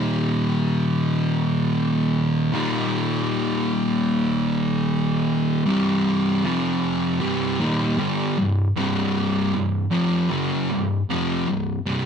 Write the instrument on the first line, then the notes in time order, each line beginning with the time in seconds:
distorted electric guitar
Already playing: D#2 A#2 D#3
2.53 D#2 A#2 D#3
5.66 C2 G2 C3
6.44 F2 C3 F3
7.20 C2 G2 C3
7.60 D#2 A#2 D#3
7.98 G2 D3 G3
8.38 C2 G2
8.77 C2 G2 C3
9.54 C2 G2
9.91 F2 C3 F3
10.30 F#2 C#3 F#3
10.70 C2 G2
11.10 F2 C3 F3
11.48 C2 G2
11.86 C2 G2 C3